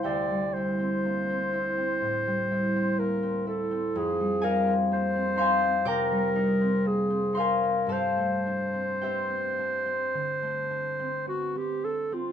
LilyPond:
<<
  \new Staff \with { instrumentName = "Clarinet" } { \time 4/4 \key d \minor \tempo 4 = 60 d''8 c''2~ c''8 bes'8 a'8 | \key g \mixolydian aes'8 bes'8 c''4 bes'4 aes'8 bes'8 | c''2. fis'16 g'16 a'16 f'16 | }
  \new Staff \with { instrumentName = "Harp" } { \time 4/4 \key d \minor << { <g' a' c'' d'' e'' f'' g'' a'' c''' e'''>1~ | \key g \mixolydian <g' a' c'' d'' e'' f'' g'' a'' c''' e'''>8 <aes' d'' f'' aes''>4 <c'' f'' aes'' c'''>8 <d'' g'' bes'' d'''>4. <c'' f'' aes'' c'''>8 | <a' d'' f'' a''>4 <g' c'' e'' g''>2. | } \\ { <d, g c' e'>16 g16 e'16 c'16 bes16 c'16 e'16 c'16 a,16 g16 e'16 c'16 bes16 c'16 e'16 c'16 | f,16 g16 ees'16 c'16 bes16 c'16 ees'16 c'16 c16 g16 ees'16 c'16 bes16 c'16 ees'16 c'16 | g,16 a16 d'16 c'16 b16 c'16 d'16 c'16 d16 a16 d'16 c'16 b16 c'16 d'16 c'16 | } >> }
>>